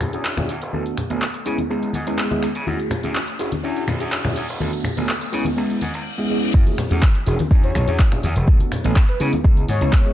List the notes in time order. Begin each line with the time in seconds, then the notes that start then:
Already playing: riser
0.01 B1, finger snap, open hi-hat, tambourine, high conga, low conga
0.13 E2 C#4 D4 E4 F#4 G#4, closed hi-hat, tambourine
0.25 clap, tambourine
0.37 C#4 D4 E4 F#4 G#4, finger snap, closed hi-hat, tambourine, high conga, low conga
0.49 E2, open hi-hat, tambourine
0.62 E1, closed hi-hat, tambourine
0.73 B1 A3 B3 D4 F#4 A4, tambourine, high conga
0.86 closed hi-hat, tambourine
0.97 finger snap, open hi-hat, tambourine, low conga
1.10 A1 A3 B3 D4 F#4 A4, closed hi-hat, tambourine, high conga
1.22 clap, tambourine
1.34 closed hi-hat, tambourine
1.45 C#3 G#3 B3 C#4 E4 G#4, open hi-hat, tambourine
1.58 closed hi-hat, tambourine, high conga
1.70 C#2 G#3 B3 C#4 E4 G#4, tambourine
1.83 closed hi-hat, tambourine
1.93 G#2, open hi-hat, tambourine, high conga
2.07 C#2 G#3 B3 C#4 E4 G#4, closed hi-hat, tambourine
2.19 clap, tambourine
2.31 G#3 B3 C#4 E4 G#4, closed hi-hat, tambourine, high conga
2.43 C#2, finger snap, open hi-hat, tambourine
2.55 C#3, closed hi-hat, tambourine
2.66 F#2 A3 C#4 E4 F#4 G#4, tambourine, high conga
2.79 closed hi-hat, tambourine
2.91 finger snap, open hi-hat, tambourine, low conga
3.03 E2 A3 C#4 E4 F#4 G#4, closed hi-hat, tambourine, high conga
3.15 clap, tambourine
3.27 closed hi-hat, tambourine
3.39 E1 C#4 D4 E4 F#4 G#4, open hi-hat, tambourine
3.52 closed hi-hat, tambourine, high conga
3.63 E2 C#4 D4 E4 F#4 G#4, tambourine
3.76 closed hi-hat, tambourine
3.87 B1, finger snap, open hi-hat, tambourine, high conga, low conga
4.00 E2 C#4 D4 E4 F#4 G#4, closed hi-hat, tambourine
4.12 clap, tambourine
4.24 C#4 D4 E4 F#4 G#4, finger snap, closed hi-hat, tambourine, high conga, low conga
4.36 E2, open hi-hat, tambourine
4.48 E1, closed hi-hat, tambourine
4.60 B1 A3 B3 D4 F#4 A4, tambourine, high conga
4.73 closed hi-hat, tambourine
4.84 finger snap, open hi-hat, tambourine, low conga
4.97 A1 A3 B3 D4 F#4 A4, closed hi-hat, tambourine, high conga
5.09 clap, tambourine
5.21 closed hi-hat, tambourine
5.32 C#3 G#3 B3 C#4 E4 G#4, open hi-hat, tambourine
5.45 closed hi-hat, tambourine, high conga
5.57 C#2 G#3 B3 C#4 E4 G#4, tambourine, reverse cymbal
5.70 closed hi-hat, tambourine
5.81 G#2, open hi-hat, tambourine, high conga
5.94 C#2, closed hi-hat, tambourine
6.18 G#3 B3 C#4 E4 G#4
6.29 G#3 B3 C#4 E4 G#4
6.54 F#2, kick, crash, tambourine
6.67 closed hi-hat, tambourine, high conga
6.77 finger snap, open hi-hat, tambourine, low conga
6.90 E2 A3 C#4 E4 F#4 G#4, closed hi-hat, tambourine
7.02 kick, clap, tambourine, high conga
7.15 closed hi-hat, tambourine
7.26 E1 C#4 D4 E4 F#4 G#4, open hi-hat, tambourine
7.39 closed hi-hat, tambourine, high conga
7.51 E2 C#4 D4 E4 F#4 G#4, kick, tambourine
7.64 C#5, closed hi-hat, tambourine
7.75 B1, finger snap, open hi-hat, tambourine, high conga, low conga
7.87 E2 C#4 D4 E4 F#4 G#4, closed hi-hat, tambourine
7.99 kick, clap, tambourine
8.11 C#4 D4 E4 F#4 G#4, finger snap, closed hi-hat, tambourine, low conga
8.23 E2, open hi-hat, tambourine, high conga
8.36 E1, closed hi-hat, tambourine
8.47 A3 B3 D4 F#4 A4, kick, tambourine
8.60 closed hi-hat, tambourine, high conga
8.72 finger snap, open hi-hat, tambourine, low conga
8.84 A1 A3 B3 D4 F#4 A4, closed hi-hat, tambourine
8.96 kick, clap, tambourine, high conga
9.09 B4, closed hi-hat, tambourine
9.20 C#3 G#3 B3 C#4 E4 G#4, open hi-hat, tambourine
9.33 closed hi-hat, tambourine, high conga
9.44 C#2 G#3 B3 C#4 E4 G#4, kick, tambourine
9.57 closed hi-hat, tambourine
9.69 G#2 C#5, open hi-hat, tambourine, high conga
9.81 C#2 G#3 B3 C#4 E4 G#4, closed hi-hat, tambourine
9.93 kick, clap
10.05 G#3 B3 C#4 E4 G#4, closed hi-hat, tambourine